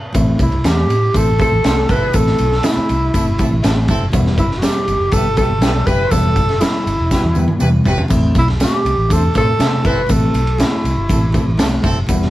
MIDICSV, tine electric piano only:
0, 0, Header, 1, 2, 480
1, 0, Start_track
1, 0, Tempo, 497100
1, 149, Time_signature, 4, 2, 24, 8
1, 11877, End_track
2, 0, Start_track
2, 0, Title_t, "Tine electric piano"
2, 0, Program_c, 0, 4
2, 139, Note_on_c, 0, 60, 101
2, 141, Note_on_c, 0, 57, 115
2, 142, Note_on_c, 0, 64, 126
2, 422, Note_off_c, 0, 60, 0
2, 423, Note_off_c, 0, 57, 0
2, 424, Note_off_c, 0, 64, 0
2, 619, Note_on_c, 0, 57, 79
2, 619, Note_on_c, 0, 60, 62
2, 620, Note_on_c, 0, 64, 76
2, 903, Note_off_c, 0, 57, 0
2, 903, Note_off_c, 0, 60, 0
2, 903, Note_off_c, 0, 64, 0
2, 1100, Note_on_c, 0, 57, 77
2, 1102, Note_on_c, 0, 60, 67
2, 1102, Note_on_c, 0, 64, 75
2, 1244, Note_off_c, 0, 57, 0
2, 1245, Note_off_c, 0, 60, 0
2, 1245, Note_off_c, 0, 64, 0
2, 1337, Note_on_c, 0, 60, 60
2, 1339, Note_on_c, 0, 57, 74
2, 1341, Note_on_c, 0, 64, 72
2, 1483, Note_off_c, 0, 60, 0
2, 1484, Note_off_c, 0, 57, 0
2, 1485, Note_off_c, 0, 64, 0
2, 1582, Note_on_c, 0, 57, 79
2, 1583, Note_on_c, 0, 60, 71
2, 1586, Note_on_c, 0, 64, 85
2, 1865, Note_off_c, 0, 57, 0
2, 1865, Note_off_c, 0, 60, 0
2, 1867, Note_off_c, 0, 64, 0
2, 2067, Note_on_c, 0, 60, 86
2, 2068, Note_on_c, 0, 57, 98
2, 2069, Note_on_c, 0, 64, 115
2, 2347, Note_off_c, 0, 60, 0
2, 2348, Note_off_c, 0, 57, 0
2, 2349, Note_off_c, 0, 64, 0
2, 2553, Note_on_c, 0, 57, 73
2, 2553, Note_on_c, 0, 60, 74
2, 2555, Note_on_c, 0, 64, 84
2, 2830, Note_off_c, 0, 57, 0
2, 2830, Note_off_c, 0, 60, 0
2, 2832, Note_off_c, 0, 64, 0
2, 3030, Note_on_c, 0, 57, 78
2, 3030, Note_on_c, 0, 64, 82
2, 3034, Note_on_c, 0, 60, 62
2, 3170, Note_off_c, 0, 57, 0
2, 3170, Note_off_c, 0, 64, 0
2, 3172, Note_off_c, 0, 60, 0
2, 3281, Note_on_c, 0, 57, 81
2, 3284, Note_on_c, 0, 60, 74
2, 3284, Note_on_c, 0, 64, 94
2, 3415, Note_off_c, 0, 57, 0
2, 3417, Note_off_c, 0, 60, 0
2, 3417, Note_off_c, 0, 64, 0
2, 3517, Note_on_c, 0, 60, 84
2, 3520, Note_on_c, 0, 57, 93
2, 3525, Note_on_c, 0, 64, 99
2, 3792, Note_off_c, 0, 60, 0
2, 3794, Note_off_c, 0, 57, 0
2, 3796, Note_off_c, 0, 64, 0
2, 3985, Note_on_c, 0, 55, 126
2, 3991, Note_on_c, 0, 59, 109
2, 3993, Note_on_c, 0, 64, 127
2, 4266, Note_off_c, 0, 55, 0
2, 4269, Note_off_c, 0, 59, 0
2, 4270, Note_off_c, 0, 64, 0
2, 4459, Note_on_c, 0, 64, 82
2, 4460, Note_on_c, 0, 59, 62
2, 4461, Note_on_c, 0, 55, 78
2, 4743, Note_off_c, 0, 64, 0
2, 4744, Note_off_c, 0, 55, 0
2, 4744, Note_off_c, 0, 59, 0
2, 4952, Note_on_c, 0, 59, 72
2, 4954, Note_on_c, 0, 55, 81
2, 4958, Note_on_c, 0, 64, 83
2, 5090, Note_off_c, 0, 59, 0
2, 5092, Note_off_c, 0, 55, 0
2, 5093, Note_off_c, 0, 64, 0
2, 5190, Note_on_c, 0, 59, 62
2, 5194, Note_on_c, 0, 55, 62
2, 5194, Note_on_c, 0, 67, 83
2, 5330, Note_off_c, 0, 59, 0
2, 5331, Note_off_c, 0, 55, 0
2, 5332, Note_off_c, 0, 67, 0
2, 5419, Note_on_c, 0, 55, 72
2, 5421, Note_on_c, 0, 64, 91
2, 5423, Note_on_c, 0, 59, 68
2, 5703, Note_off_c, 0, 55, 0
2, 5704, Note_off_c, 0, 64, 0
2, 5705, Note_off_c, 0, 59, 0
2, 5907, Note_on_c, 0, 55, 104
2, 5912, Note_on_c, 0, 59, 92
2, 5915, Note_on_c, 0, 64, 105
2, 6187, Note_off_c, 0, 55, 0
2, 6189, Note_off_c, 0, 59, 0
2, 6190, Note_off_c, 0, 64, 0
2, 6385, Note_on_c, 0, 55, 70
2, 6387, Note_on_c, 0, 59, 61
2, 6389, Note_on_c, 0, 64, 79
2, 6665, Note_off_c, 0, 55, 0
2, 6666, Note_off_c, 0, 59, 0
2, 6667, Note_off_c, 0, 64, 0
2, 6866, Note_on_c, 0, 55, 75
2, 6871, Note_on_c, 0, 66, 78
2, 6874, Note_on_c, 0, 59, 68
2, 7007, Note_off_c, 0, 55, 0
2, 7009, Note_off_c, 0, 66, 0
2, 7011, Note_off_c, 0, 59, 0
2, 7094, Note_on_c, 0, 55, 75
2, 7096, Note_on_c, 0, 59, 81
2, 7099, Note_on_c, 0, 64, 84
2, 7241, Note_off_c, 0, 55, 0
2, 7242, Note_off_c, 0, 59, 0
2, 7243, Note_off_c, 0, 64, 0
2, 7328, Note_on_c, 0, 55, 95
2, 7333, Note_on_c, 0, 59, 81
2, 7335, Note_on_c, 0, 64, 98
2, 7616, Note_off_c, 0, 55, 0
2, 7619, Note_off_c, 0, 59, 0
2, 7620, Note_off_c, 0, 64, 0
2, 7817, Note_on_c, 0, 60, 103
2, 7823, Note_on_c, 0, 57, 119
2, 7823, Note_on_c, 0, 64, 127
2, 8101, Note_off_c, 0, 60, 0
2, 8103, Note_off_c, 0, 57, 0
2, 8104, Note_off_c, 0, 64, 0
2, 8306, Note_on_c, 0, 57, 71
2, 8310, Note_on_c, 0, 60, 72
2, 8310, Note_on_c, 0, 64, 79
2, 8585, Note_off_c, 0, 57, 0
2, 8587, Note_off_c, 0, 60, 0
2, 8587, Note_off_c, 0, 64, 0
2, 8770, Note_on_c, 0, 57, 79
2, 8777, Note_on_c, 0, 60, 64
2, 8778, Note_on_c, 0, 62, 73
2, 8918, Note_off_c, 0, 57, 0
2, 8921, Note_off_c, 0, 60, 0
2, 8921, Note_off_c, 0, 62, 0
2, 9022, Note_on_c, 0, 57, 68
2, 9025, Note_on_c, 0, 64, 74
2, 9028, Note_on_c, 0, 60, 61
2, 9164, Note_off_c, 0, 57, 0
2, 9165, Note_off_c, 0, 64, 0
2, 9166, Note_off_c, 0, 60, 0
2, 9268, Note_on_c, 0, 57, 72
2, 9268, Note_on_c, 0, 64, 82
2, 9273, Note_on_c, 0, 60, 69
2, 9545, Note_off_c, 0, 57, 0
2, 9545, Note_off_c, 0, 64, 0
2, 9548, Note_off_c, 0, 60, 0
2, 9742, Note_on_c, 0, 57, 101
2, 9744, Note_on_c, 0, 60, 102
2, 9751, Note_on_c, 0, 64, 108
2, 10023, Note_off_c, 0, 57, 0
2, 10023, Note_off_c, 0, 60, 0
2, 10027, Note_off_c, 0, 64, 0
2, 10238, Note_on_c, 0, 57, 79
2, 10238, Note_on_c, 0, 60, 67
2, 10242, Note_on_c, 0, 64, 84
2, 10510, Note_off_c, 0, 57, 0
2, 10510, Note_off_c, 0, 60, 0
2, 10512, Note_off_c, 0, 64, 0
2, 10712, Note_on_c, 0, 57, 74
2, 10712, Note_on_c, 0, 64, 78
2, 10715, Note_on_c, 0, 60, 64
2, 10848, Note_off_c, 0, 57, 0
2, 10848, Note_off_c, 0, 64, 0
2, 10850, Note_off_c, 0, 60, 0
2, 10947, Note_on_c, 0, 60, 70
2, 10950, Note_on_c, 0, 57, 78
2, 10951, Note_on_c, 0, 64, 95
2, 11086, Note_off_c, 0, 60, 0
2, 11087, Note_off_c, 0, 57, 0
2, 11088, Note_off_c, 0, 64, 0
2, 11185, Note_on_c, 0, 57, 98
2, 11190, Note_on_c, 0, 60, 85
2, 11194, Note_on_c, 0, 64, 94
2, 11464, Note_off_c, 0, 57, 0
2, 11466, Note_off_c, 0, 60, 0
2, 11468, Note_off_c, 0, 64, 0
2, 11677, Note_on_c, 0, 59, 123
2, 11679, Note_on_c, 0, 64, 127
2, 11681, Note_on_c, 0, 55, 122
2, 11877, Note_off_c, 0, 55, 0
2, 11877, Note_off_c, 0, 59, 0
2, 11877, Note_off_c, 0, 64, 0
2, 11877, End_track
0, 0, End_of_file